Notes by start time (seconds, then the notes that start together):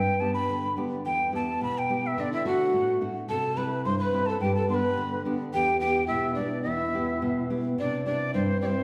Already playing: G2 G5
0.20 B3 D4 G4 A5
0.34 B5
0.49 D3
0.77 B3 D4 G4
1.05 E2 G5
1.32 B3 E4 G4 A5
1.61 B2 B5
1.78 G5
1.89 B3 E4 G4
2.06 E5
2.18 D3 D4 D5
2.32 E4 E5
2.45 A3 D4 F#4 F#5
2.73 A2
3.01 A3 D4 F#4
3.29 C3 A4 A5
3.56 C4 E4 G4 B4 B5
3.85 G2 C5 C6
3.98 B4 B5 C6
4.13 C4 E4 G4
4.26 A4 A5
4.40 G2 G4 G5
4.55 A4 A5
4.69 B3 D4 G4 B4 C6
4.74 B5
4.98 D3
5.25 B3 D4 G4
5.53 E2 G4 G5
5.79 B3 E4 G4 G5
6.06 B2 E4 E5
6.34 D4 D5
6.38 B3 E4 G4
6.62 E2 E4 E5
6.94 B3 E4 G4
7.22 B2
7.50 B3 E4 G4
7.78 C3 D4 D5
8.05 C4 D4 E4 G4 D5
8.33 G2 C4 C5
8.61 C4 E4 G4 D5
8.66 C5